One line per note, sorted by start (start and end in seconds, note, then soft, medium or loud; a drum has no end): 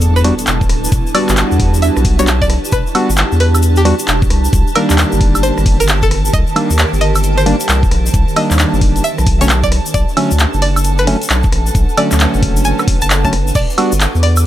0.00 0.32 E2 medium
0.00 0.40 B3 medium
0.00 5.13 D4 medium
0.00 4.30 E4 medium
0.00 0.40 A4 medium
0.00 4.30 B4 medium
0.00 13.56 A5 medium
0.00 closed hi-hat medium
0.00 impact medium
0.00 shaker medium
0.16 0.31 B4 medium
0.16 shaker soft
0.24 0.34 G3 loud
0.24 0.34 B3 medium
0.24 0.34 D4 medium
0.24 0.34 F#4 loud
0.24 cross-stick medium
0.24 open hi-hat loud
0.39 closed hi-hat medium
0.39 shaker medium
0.44 0.65 E1 medium
0.44 9.04 G4 medium
0.44 clap loud
0.44 closed hi-hat medium
0.44 shaker medium
0.61 kick loud
0.61 shaker soft
0.69 0.88 D1 medium
0.69 cross-stick medium
0.69 open hi-hat loud
0.84 shaker medium
0.92 1.02 E1 loud
0.92 kick loud
0.92 closed hi-hat medium
0.92 shaker medium
1.07 shaker soft
1.15 2.16 G3 medium
1.15 2.16 B3 medium
1.15 2.16 D4 medium
1.15 2.16 F#4 medium
1.15 1.33 D5 loud
1.15 open hi-hat loud
1.15 high woodblock medium
1.29 1.44 G1 loud
1.29 clap medium
1.29 shaker medium
1.37 clap loud
1.37 closed hi-hat medium
1.37 shaker medium
1.51 1.90 E2 medium
1.51 shaker soft
1.60 kick loud
1.60 open hi-hat loud
1.74 closed hi-hat soft
1.74 shaker medium
1.82 2.01 E5 medium
1.82 closed hi-hat medium
1.82 shaker medium
1.97 2.58 B1 loud
1.97 cross-stick medium
1.97 shaker soft
2.05 kick loud
2.05 open hi-hat loud
2.19 2.29 G3 loud
2.19 2.29 B3 medium
2.19 2.29 D4 medium
2.19 2.29 F#4 loud
2.19 2.27 C#5 medium
2.19 closed hi-hat medium
2.19 shaker medium
2.27 clap loud
2.27 closed hi-hat medium
2.27 shaker medium
2.42 2.57 D5 medium
2.42 kick medium
2.42 shaker soft
2.50 cross-stick medium
2.50 open hi-hat loud
2.65 shaker medium
2.72 2.83 E1 loud
2.72 2.91 B4 loud
2.72 kick loud
2.72 closed hi-hat medium
2.72 shaker medium
2.87 shaker soft
2.95 3.10 G3 medium
2.95 3.10 B3 medium
2.95 3.10 D4 medium
2.95 3.10 F#4 loud
2.95 open hi-hat loud
2.95 high woodblock medium
3.09 3.24 G1 loud
3.09 shaker medium
3.17 clap loud
3.17 closed hi-hat medium
3.17 shaker medium
3.32 3.93 E2 medium
3.32 shaker soft
3.40 3.58 B4 loud
3.40 cross-stick medium
3.40 open hi-hat loud
3.55 closed hi-hat soft
3.55 high woodblock medium
3.55 shaker medium
3.62 closed hi-hat medium
3.62 shaker medium
3.76 3.92 G4 loud
3.76 shaker soft
3.85 3.95 G3 loud
3.85 3.95 B3 medium
3.85 3.95 D4 medium
3.85 3.95 F#4 loud
3.85 cross-stick medium
3.85 open hi-hat loud
3.99 closed hi-hat medium
3.99 shaker medium
4.08 4.26 E1 medium
4.08 clap loud
4.08 closed hi-hat medium
4.08 shaker medium
4.22 kick loud
4.22 shaker soft
4.30 4.48 C2 medium
4.30 9.04 D#3 medium
4.30 cross-stick medium
4.30 open hi-hat loud
4.45 shaker medium
4.53 4.63 C2 loud
4.53 kick loud
4.53 closed hi-hat medium
4.53 shaker medium
4.59 9.04 A#4 medium
4.67 shaker soft
4.75 5.77 D#3 medium
4.75 5.77 G3 medium
4.75 5.77 A#3 medium
4.75 5.77 D4 medium
4.75 4.94 A#4 medium
4.75 open hi-hat loud
4.75 high woodblock medium
4.90 5.05 D#2 loud
4.90 clap medium
4.90 shaker medium
4.98 clap loud
4.98 closed hi-hat medium
4.98 shaker medium
5.11 5.51 G1 medium
5.11 9.04 C5 medium
5.11 shaker soft
5.21 kick loud
5.21 open hi-hat loud
5.35 closed hi-hat soft
5.35 high woodblock medium
5.35 shaker medium
5.43 5.61 C5 medium
5.43 closed hi-hat medium
5.43 shaker medium
5.58 5.65 G1 loud
5.58 cross-stick medium
5.58 shaker soft
5.66 6.30 G1 medium
5.66 kick loud
5.66 open hi-hat loud
5.80 5.88 A#4 medium
5.80 closed hi-hat medium
5.80 shaker medium
5.88 clap loud
5.88 closed hi-hat medium
5.88 shaker medium
6.03 6.18 A4 loud
6.03 kick medium
6.03 shaker soft
6.11 cross-stick medium
6.11 open hi-hat loud
6.25 shaker medium
6.33 6.44 C2 loud
6.33 6.52 D#5 loud
6.33 kick loud
6.33 closed hi-hat medium
6.33 shaker medium
6.47 shaker soft
6.56 6.71 D#3 medium
6.56 6.71 G3 medium
6.56 6.71 A#3 medium
6.56 6.71 D4 loud
6.56 open hi-hat loud
6.56 high woodblock medium
6.70 6.85 D#2 medium
6.70 shaker medium
6.79 clap loud
6.79 closed hi-hat medium
6.79 shaker medium
6.93 7.54 G1 medium
6.93 shaker soft
7.01 7.19 D#5 loud
7.01 cross-stick soft
7.01 open hi-hat loud
7.15 closed hi-hat soft
7.15 high woodblock medium
7.15 shaker medium
7.23 closed hi-hat medium
7.23 shaker medium
7.38 7.53 C5 medium
7.38 shaker soft
7.46 7.56 D#3 loud
7.46 7.56 G3 medium
7.46 7.56 A#3 medium
7.46 7.56 D4 loud
7.46 cross-stick medium
7.46 open hi-hat loud
7.60 closed hi-hat medium
7.60 shaker medium
7.69 7.87 C2 medium
7.69 clap loud
7.69 closed hi-hat medium
7.69 shaker medium
7.83 kick loud
7.83 shaker soft
7.91 8.09 A#1 medium
7.91 cross-stick medium
7.91 open hi-hat loud
8.06 shaker medium
8.14 8.24 C2 medium
8.14 kick loud
8.14 closed hi-hat medium
8.14 shaker medium
8.28 shaker soft
8.36 9.03 D#3 medium
8.36 9.03 G3 medium
8.36 9.03 A#3 medium
8.36 9.03 D4 medium
8.36 8.55 D#5 medium
8.36 open hi-hat loud
8.36 high woodblock medium
8.51 8.65 D#2 loud
8.51 clap medium
8.51 shaker medium
8.59 clap loud
8.59 closed hi-hat medium
8.59 shaker medium
8.73 9.00 G1 medium
8.73 shaker soft
8.81 kick loud
8.81 open hi-hat loud
8.96 closed hi-hat soft
8.96 shaker medium
9.04 14.46 D4 medium
9.04 9.22 E5 medium
9.04 closed hi-hat medium
9.04 shaker medium
9.18 9.80 B1 loud
9.18 cross-stick medium
9.18 shaker soft
9.26 kick loud
9.26 open hi-hat loud
9.41 9.51 D3 medium
9.41 9.51 F#3 medium
9.41 9.51 A3 medium
9.41 9.51 C#4 loud
9.41 14.46 A4 medium
9.41 9.49 C#5 medium
9.41 closed hi-hat medium
9.41 shaker medium
9.48 14.46 B4 medium
9.48 clap loud
9.48 closed hi-hat medium
9.48 shaker medium
9.63 9.79 D5 medium
9.63 kick medium
9.63 shaker soft
9.72 cross-stick medium
9.72 open hi-hat loud
9.86 shaker medium
9.94 10.05 B1 loud
9.94 10.12 D5 loud
9.94 kick loud
9.94 closed hi-hat medium
9.94 shaker medium
10.01 13.55 F#5 medium
10.09 shaker soft
10.17 10.32 D3 medium
10.17 10.32 F#3 medium
10.17 10.32 A3 medium
10.17 10.32 C#4 loud
10.17 open hi-hat loud
10.17 high woodblock medium
10.31 10.46 D2 medium
10.31 shaker medium
10.39 clap loud
10.39 closed hi-hat medium
10.39 shaker medium
10.54 11.15 F#1 medium
10.54 shaker soft
10.62 10.80 D5 medium
10.62 cross-stick medium
10.62 open hi-hat loud
10.76 closed hi-hat soft
10.76 high woodblock medium
10.76 shaker medium
10.84 closed hi-hat medium
10.84 shaker medium
10.98 11.14 B4 medium
10.98 shaker soft
11.07 11.17 D3 loud
11.07 11.17 F#3 medium
11.07 11.17 A3 medium
11.07 11.17 C#4 loud
11.07 cross-stick medium
11.07 open hi-hat loud
11.22 closed hi-hat medium
11.22 shaker medium
11.30 11.48 B1 medium
11.30 clap loud
11.30 closed hi-hat medium
11.30 shaker medium
11.43 kick loud
11.43 shaker soft
11.52 11.70 A1 medium
11.52 cross-stick medium
11.52 open hi-hat loud
11.66 shaker medium
11.75 11.85 B1 medium
11.75 kick loud
11.75 closed hi-hat medium
11.75 shaker medium
11.89 shaker soft
11.97 12.99 D3 medium
11.97 12.99 F#3 medium
11.97 12.99 A3 medium
11.97 12.99 C#4 medium
11.97 12.16 D5 loud
11.97 open hi-hat loud
11.97 high woodblock medium
12.11 12.27 D2 loud
12.11 clap medium
12.11 shaker medium
12.20 clap loud
12.20 closed hi-hat medium
12.20 shaker medium
12.34 12.73 F#1 medium
12.34 shaker soft
12.43 kick loud
12.43 open hi-hat loud
12.57 closed hi-hat soft
12.57 shaker medium
12.64 12.83 G#5 medium
12.64 closed hi-hat medium
12.64 shaker medium
12.79 cross-stick medium
12.79 high woodblock medium
12.79 shaker soft
12.88 kick loud
12.88 open hi-hat loud
13.02 13.52 F#1 medium
13.02 13.10 A5 medium
13.02 closed hi-hat medium
13.02 shaker medium
13.10 clap loud
13.10 closed hi-hat medium
13.10 shaker medium
13.24 13.34 D3 medium
13.24 13.34 F#3 medium
13.24 13.34 A3 medium
13.24 13.34 C#4 medium
13.24 13.40 A5 medium
13.24 kick medium
13.24 shaker soft
13.33 cross-stick medium
13.33 open hi-hat loud
13.47 shaker medium
13.55 13.66 E1 loud
13.55 14.46 E4 loud
13.55 13.74 D5 loud
13.55 14.46 D6 medium
13.55 kick loud
13.55 closed hi-hat medium
13.55 crash medium
13.55 shaker medium
13.70 14.46 D5 medium
13.70 shaker soft
13.78 13.93 G3 medium
13.78 13.93 B3 medium
13.78 13.93 D4 medium
13.78 13.93 F#4 loud
13.78 open hi-hat loud
13.78 high woodblock medium
13.92 14.07 G1 medium
13.92 shaker medium
14.00 clap loud
14.00 closed hi-hat medium
14.00 shaker medium
14.15 14.46 E2 medium
14.15 shaker soft
14.23 14.41 D5 medium
14.23 cross-stick medium
14.23 open hi-hat loud
14.36 closed hi-hat soft
14.36 high woodblock medium
14.36 shaker medium